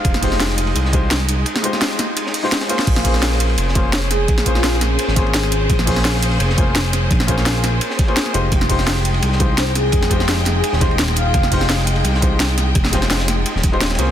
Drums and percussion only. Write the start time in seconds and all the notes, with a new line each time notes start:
0.05 kick, closed hi-hat, ride
0.14 snare
0.23 kick, closed hi-hat, open hi-hat
0.32 snare
0.40 snare, closed hi-hat, ride
0.50 snare
0.58 closed hi-hat, ride
0.67 ride
0.76 closed hi-hat, ride
0.85 snare
0.93 kick, closed hi-hat, ride
1.10 snare, closed hi-hat, ride
1.29 closed hi-hat, ride
1.46 closed hi-hat, ride
1.55 snare
1.64 closed hi-hat, ride
1.73 snare
1.81 snare, closed hi-hat, ride
1.90 snare
1.99 snare, closed hi-hat, ride
2.17 closed hi-hat, ride
2.26 snare
2.34 closed hi-hat, open hi-hat
2.44 snare
2.52 snare, closed hi-hat, ride
2.61 snare, ride
2.69 closed hi-hat, ride
2.79 snare
2.87 kick, closed hi-hat, ride, crash
2.96 snare
3.05 kick, closed hi-hat, open hi-hat
3.14 snare
3.22 snare, closed hi-hat, ride
3.33 snare
3.40 closed hi-hat, ride
3.49 ride
3.58 closed hi-hat, ride
3.68 snare
3.75 kick, closed hi-hat, ride
3.93 snare, closed hi-hat, ride
4.11 snare, closed hi-hat, ride
4.28 kick, closed hi-hat, ride
4.38 snare
4.46 kick, closed hi-hat, ride
4.55 snare
4.63 snare, closed hi-hat, ride
4.73 snare
4.81 snare, closed hi-hat, ride
4.99 closed hi-hat, ride
5.08 snare
5.16 kick, snare, closed hi-hat, ride
5.26 ride
5.34 snare, closed hi-hat, ride
5.43 snare, ride
5.52 closed hi-hat, ride
5.70 kick, closed hi-hat, ride
5.79 snare
5.87 kick, closed hi-hat, open hi-hat
5.96 snare
6.05 snare, closed hi-hat, ride
6.14 snare
6.22 closed hi-hat, ride
6.31 ride
6.40 closed hi-hat, ride
6.50 snare
6.58 kick, closed hi-hat, ride
6.75 snare, closed hi-hat, ride
6.93 snare, closed hi-hat, ride
7.11 kick, closed hi-hat, ride
7.20 snare
7.28 kick, closed hi-hat, ride
7.38 snare
7.45 snare, closed hi-hat, ride
7.55 snare
7.64 snare, closed hi-hat, ride
7.81 closed hi-hat, ride
7.90 snare
7.99 kick, snare, closed hi-hat, ride
8.08 ride
8.17 snare, closed hi-hat, ride
8.26 snare, ride
8.34 closed hi-hat, ride
8.52 kick, closed hi-hat, ride
8.61 snare
8.70 kick, closed hi-hat, open hi-hat
8.79 snare
8.86 snare, closed hi-hat, ride
8.95 snare
9.05 closed hi-hat, ride
9.14 ride
9.23 closed hi-hat, ride
9.32 snare
9.40 kick, closed hi-hat, ride
9.58 snare, closed hi-hat, ride
9.75 snare, closed hi-hat, ride
9.92 kick, closed hi-hat, ride
10.01 snare
10.11 kick, closed hi-hat, ride
10.20 snare
10.28 snare, closed hi-hat, ride
10.37 snare
10.45 snare, closed hi-hat, ride
10.64 closed hi-hat, ride
10.73 snare
10.81 kick, snare, closed hi-hat, ride
10.91 ride
10.99 snare, closed hi-hat, ride
11.08 snare, ride
11.16 closed hi-hat, ride
11.34 kick, closed hi-hat, ride
11.43 snare
11.52 kick, closed hi-hat, open hi-hat
11.61 snare
11.69 snare, closed hi-hat, ride
11.79 snare
11.87 closed hi-hat, ride
11.96 ride
12.04 closed hi-hat, ride
12.14 snare
12.22 kick, closed hi-hat, ride
12.40 snare, closed hi-hat, ride
12.58 snare, closed hi-hat, ride
12.75 kick, closed hi-hat, ride
12.85 snare
12.93 kick, snare, closed hi-hat, ride
13.02 snare, ride
13.10 snare, closed hi-hat, ride
13.20 snare, ride
13.28 snare, closed hi-hat, ride
13.46 closed hi-hat, ride
13.56 snare
13.63 kick, snare, closed hi-hat, ride
13.73 ride
13.81 snare, closed hi-hat, ride
13.85 snare, ride
13.91 snare, ride
13.95 snare, closed hi-hat, ride
13.99 ride